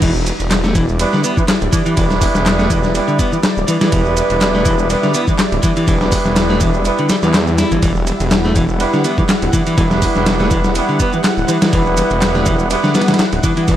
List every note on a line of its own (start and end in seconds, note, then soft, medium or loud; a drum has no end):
0.02 0.32 E1 loud
0.02 0.11 E3 loud
0.02 13.77 G3 medium
0.02 13.77 E4 medium
0.02 7.81 D5 medium
0.02 kick loud
0.02 crash medium
0.02 ride medium
0.02 shaker soft
0.16 shaker soft
0.27 ride medium
0.27 shaker medium
0.40 1.05 E1 medium
0.40 ride soft
0.40 shaker soft
0.51 snare loud
0.51 clap loud
0.51 ride medium
0.51 shaker soft
0.64 0.74 A3 medium
0.64 snare soft
0.64 shaker soft
0.75 0.84 E3 loud
0.75 kick loud
0.75 ride medium
0.75 shaker medium
0.89 shaker soft
0.99 1.22 G3 loud
0.99 1.21 B3 loud
0.99 1.21 D4 medium
0.99 1.21 E4 medium
0.99 1.21 B4 loud
0.99 ride medium
0.99 shaker soft
1.13 1.24 D3 medium
1.13 snare soft
1.13 shaker soft
1.24 1.33 G3 medium
1.24 1.33 B3 medium
1.24 1.36 B3 medium
1.24 1.33 D4 medium
1.24 1.33 E4 medium
1.24 1.33 B4 medium
1.24 ride medium
1.24 shaker medium
1.37 1.42 E3 medium
1.37 1.44 G3 medium
1.37 1.44 B3 medium
1.37 1.44 D4 medium
1.37 1.44 E4 medium
1.37 1.44 B4 medium
1.37 kick loud
1.37 shaker soft
1.48 snare loud
1.48 clap loud
1.48 ride medium
1.48 shaker soft
1.62 1.69 D1 medium
1.62 ride soft
1.62 shaker soft
1.72 1.81 E3 loud
1.72 2.92 G3 medium
1.72 2.92 B3 loud
1.72 2.92 D4 medium
1.72 2.92 E4 medium
1.72 2.92 B4 loud
1.72 kick loud
1.72 ride medium
1.72 shaker medium
1.86 1.96 E3 loud
1.86 ride soft
1.86 shaker soft
1.97 2.27 E1 loud
1.97 2.06 E3 loud
1.97 kick loud
1.97 ride medium
1.97 shaker soft
2.10 snare medium
2.10 shaker soft
2.21 kick loud
2.21 open hi-hat medium
2.21 shaker medium
2.35 3.00 E1 medium
2.35 snare soft
2.35 shaker soft
2.46 snare loud
2.46 clap loud
2.46 ride medium
2.46 shaker soft
2.59 2.69 A3 medium
2.59 snare soft
2.59 shaker soft
2.70 2.79 E3 loud
2.70 kick medium
2.70 ride medium
2.70 shaker medium
2.84 snare soft
2.84 shaker soft
2.95 3.17 G3 loud
2.95 3.17 B3 medium
2.95 3.17 D4 medium
2.95 3.17 E4 medium
2.95 3.17 B4 loud
2.95 ride medium
2.95 shaker soft
3.08 3.18 D3 medium
3.08 shaker soft
3.19 3.28 G3 medium
3.19 3.31 B3 medium
3.19 3.28 B3 medium
3.19 3.28 D4 medium
3.19 3.28 E4 medium
3.19 3.28 B4 medium
3.19 kick medium
3.19 ride medium
3.19 shaker medium
3.32 3.37 E3 medium
3.32 3.40 G3 medium
3.32 3.40 B3 medium
3.32 3.40 D4 medium
3.32 3.40 E4 medium
3.32 3.40 B4 medium
3.32 shaker soft
3.43 snare loud
3.43 clap loud
3.43 ride medium
3.43 shaker soft
3.57 3.64 D1 medium
3.57 shaker soft
3.68 3.76 E3 loud
3.68 4.87 G3 loud
3.68 4.87 B3 loud
3.68 4.87 D4 medium
3.68 4.87 E4 medium
3.68 4.87 B4 loud
3.68 ride medium
3.68 shaker medium
3.81 3.91 E3 loud
3.81 snare loud
3.81 ride medium
3.81 shaker soft
3.92 4.22 E1 loud
3.92 4.01 E3 loud
3.92 kick loud
3.92 ride medium
3.92 shaker soft
4.06 shaker soft
4.17 ride medium
4.17 shaker medium
4.30 4.95 E1 medium
4.30 ride soft
4.30 shaker soft
4.41 snare loud
4.41 clap loud
4.41 ride medium
4.41 shaker soft
4.55 4.64 A3 medium
4.55 snare soft
4.55 shaker soft
4.65 4.74 E3 loud
4.65 kick medium
4.65 ride medium
4.65 shaker medium
4.79 shaker soft
4.90 5.12 G3 loud
4.90 5.12 B3 loud
4.90 5.12 D4 medium
4.90 5.12 E4 medium
4.90 5.12 B4 loud
4.90 ride medium
4.90 shaker soft
5.03 5.14 D3 medium
5.03 snare soft
5.03 shaker soft
5.14 5.23 G3 medium
5.14 5.23 B3 medium
5.14 5.27 B3 medium
5.14 5.23 D4 medium
5.14 5.23 E4 medium
5.14 5.23 B4 medium
5.14 ride medium
5.14 shaker medium
5.28 5.32 E3 medium
5.28 5.35 G3 medium
5.28 5.35 B3 medium
5.28 5.35 D4 medium
5.28 5.35 E4 medium
5.28 5.35 B4 medium
5.28 kick medium
5.28 shaker soft
5.39 snare loud
5.39 clap loud
5.39 ride medium
5.39 shaker soft
5.52 5.59 D1 medium
5.52 ride soft
5.52 shaker soft
5.63 5.72 E3 loud
5.63 6.82 G3 loud
5.63 6.82 B3 loud
5.63 6.82 D4 medium
5.63 6.82 E4 medium
5.63 6.82 B4 loud
5.63 kick loud
5.63 ride medium
5.63 shaker medium
5.76 5.87 E3 loud
5.76 ride soft
5.76 shaker soft
5.87 6.17 E1 loud
5.87 5.96 E3 loud
5.87 kick loud
5.87 ride medium
5.87 shaker soft
6.01 snare medium
6.01 shaker soft
6.12 kick loud
6.12 open hi-hat medium
6.12 shaker medium
6.25 6.90 E1 medium
6.25 snare soft
6.25 shaker soft
6.36 snare loud
6.36 clap loud
6.36 ride medium
6.36 shaker soft
6.49 6.60 A3 medium
6.49 snare soft
6.49 shaker soft
6.60 6.69 E3 loud
6.60 kick loud
6.60 ride medium
6.60 shaker medium
6.74 shaker soft
6.85 7.07 G3 loud
6.85 7.07 B3 loud
6.85 7.07 D4 medium
6.85 7.07 E4 medium
6.85 7.07 B4 loud
6.85 ride medium
6.85 shaker soft
6.98 7.09 D3 medium
6.98 ride soft
6.98 shaker soft
7.09 7.15 G3 medium
7.09 snare loud
7.09 ride medium
7.09 shaker medium
7.23 7.63 E2 loud
7.23 7.33 E3 medium
7.23 7.34 G3 medium
7.23 7.34 B3 medium
7.23 7.34 D4 medium
7.23 7.34 E4 medium
7.23 7.34 B4 medium
7.23 snare soft
7.23 shaker soft
7.34 snare loud
7.34 clap loud
7.34 ride medium
7.34 shaker soft
7.47 shaker soft
7.58 7.70 E4 medium
7.58 snare loud
7.58 ride medium
7.58 shaker medium
7.71 7.78 G1 loud
7.71 7.82 E3 loud
7.71 ride soft
7.71 shaker soft
7.83 8.12 E1 loud
7.83 7.91 E3 loud
7.83 13.77 F#5 medium
7.83 kick loud
7.83 ride medium
7.83 shaker soft
7.96 high conga medium
7.96 shaker soft
8.07 ride medium
8.07 shaker medium
8.20 8.85 E1 medium
8.20 ride soft
8.20 muted conga medium
8.20 shaker soft
8.31 snare loud
8.31 clap loud
8.31 ride medium
8.31 shaker soft
8.45 8.55 A3 medium
8.45 snare soft
8.45 low conga medium
8.45 shaker soft
8.56 8.64 E3 loud
8.56 kick medium
8.56 ride medium
8.56 muted conga medium
8.56 high conga medium
8.56 shaker medium
8.69 shaker soft
8.80 9.02 G3 loud
8.80 9.02 B3 loud
8.80 9.02 D4 medium
8.80 9.02 E4 medium
8.80 9.02 B4 loud
8.80 ride medium
8.80 shaker soft
8.93 9.04 D3 medium
8.93 snare soft
8.93 shaker soft
9.04 9.13 G3 medium
9.04 9.13 B3 medium
9.04 9.17 B3 medium
9.04 9.13 D4 medium
9.04 9.13 E4 medium
9.04 9.13 B4 medium
9.04 ride medium
9.04 muted conga soft
9.04 shaker medium
9.18 9.22 E3 medium
9.18 9.25 G3 medium
9.18 9.25 B3 medium
9.18 9.25 D4 medium
9.18 9.25 E4 medium
9.18 9.25 B4 medium
9.18 kick medium
9.18 high conga loud
9.18 low conga medium
9.18 shaker soft
9.29 snare loud
9.29 clap loud
9.29 ride medium
9.29 shaker soft
9.42 9.49 D1 medium
9.42 ride soft
9.42 muted conga medium
9.42 shaker soft
9.53 9.62 E3 loud
9.53 10.73 G3 loud
9.53 10.73 B3 loud
9.53 10.73 D4 medium
9.53 10.73 E4 medium
9.53 10.73 B4 loud
9.53 kick loud
9.53 ride medium
9.53 low conga medium
9.53 shaker medium
9.67 9.76 E3 loud
9.67 ride soft
9.67 shaker soft
9.78 10.07 E1 loud
9.78 9.86 E3 loud
9.78 kick loud
9.78 ride medium
9.78 shaker soft
9.91 snare medium
9.91 muted conga medium
9.91 high conga medium
9.91 shaker soft
10.02 kick loud
10.02 open hi-hat medium
10.02 shaker medium
10.15 10.81 E1 medium
10.15 snare soft
10.15 shaker soft
10.26 snare loud
10.26 clap loud
10.26 ride medium
10.26 muted conga medium
10.26 shaker soft
10.40 10.50 A3 medium
10.40 snare soft
10.40 low conga medium
10.40 shaker soft
10.51 10.59 E3 loud
10.51 kick loud
10.51 ride medium
10.51 high conga medium
10.51 shaker medium
10.64 snare soft
10.64 shaker soft
10.75 10.97 G3 medium
10.75 10.97 B3 medium
10.75 10.97 D4 medium
10.75 10.97 E4 medium
10.75 10.97 B4 loud
10.75 ride medium
10.75 muted conga medium
10.75 shaker soft
10.89 10.99 D3 medium
10.89 shaker soft
11.00 11.08 G3 medium
11.00 11.12 B3 medium
11.00 11.08 B3 medium
11.00 11.08 D4 medium
11.00 11.08 E4 medium
11.00 11.08 B4 medium
11.00 kick medium
11.00 ride medium
11.00 shaker medium
11.13 11.17 E3 medium
11.13 11.20 G3 medium
11.13 11.20 B3 medium
11.13 11.20 D4 medium
11.13 11.20 E4 medium
11.13 11.20 B4 medium
11.13 muted conga medium
11.13 high conga loud
11.13 shaker soft
11.24 snare loud
11.24 clap loud
11.24 ride medium
11.24 shaker soft
11.37 11.44 D1 medium
11.37 shaker soft
11.48 11.57 E3 loud
11.48 12.68 G3 loud
11.48 12.68 B3 loud
11.48 12.68 D4 medium
11.48 12.68 E4 medium
11.48 12.68 B4 loud
11.48 ride medium
11.48 shaker medium
11.62 11.71 E3 loud
11.62 snare loud
11.62 ride medium
11.62 muted conga medium
11.62 shaker soft
11.73 12.02 E1 loud
11.73 11.81 E3 loud
11.73 kick loud
11.73 ride medium
11.73 shaker soft
11.86 high conga medium
11.86 shaker soft
11.97 ride medium
11.97 muted conga medium
11.97 shaker medium
12.10 12.76 E1 medium
12.10 ride soft
12.10 shaker soft
12.21 snare loud
12.21 clap loud
12.21 ride medium
12.21 shaker soft
12.35 12.45 A3 medium
12.35 snare soft
12.35 low conga medium
12.35 shaker soft
12.45 12.54 E3 loud
12.45 kick medium
12.45 ride medium
12.45 muted conga medium
12.45 high conga medium
12.45 shaker medium
12.59 shaker soft
12.70 12.92 G3 loud
12.70 12.92 B3 loud
12.70 12.92 D4 medium
12.70 12.92 E4 medium
12.70 12.92 B4 loud
12.70 ride loud
12.70 shaker soft
12.84 12.94 D3 medium
12.84 snare soft
12.84 muted conga medium
12.84 shaker soft
12.95 13.03 G3 medium
12.95 13.07 B3 medium
12.95 13.03 B3 medium
12.95 13.03 D4 medium
12.95 13.03 E4 medium
12.95 13.03 B4 medium
12.95 snare medium
12.95 ride medium
12.95 shaker medium
13.01 snare medium
13.01 ride medium
13.08 13.12 E3 medium
13.08 13.15 G3 medium
13.08 13.15 B3 medium
13.08 13.15 D4 medium
13.08 13.15 E4 medium
13.08 13.15 B4 medium
13.08 snare medium
13.08 ride medium
13.08 high conga medium
13.08 low conga medium
13.08 shaker soft
13.14 snare medium
13.14 ride medium
13.19 snare loud
13.19 clap loud
13.19 ride medium
13.19 shaker soft
13.32 13.39 D1 medium
13.32 ride soft
13.32 muted conga medium
13.32 shaker soft
13.43 13.52 E3 loud
13.43 13.77 G3 loud
13.43 13.77 B3 loud
13.43 13.77 D4 medium
13.43 13.77 E4 medium
13.43 13.77 B4 loud
13.43 kick loud
13.43 ride medium
13.43 low conga medium
13.43 shaker medium
13.57 13.67 E3 loud
13.57 ride soft
13.57 shaker soft
13.68 13.77 E1 loud
13.68 13.76 E3 loud
13.68 kick loud
13.68 ride medium
13.68 muted conga medium
13.68 shaker soft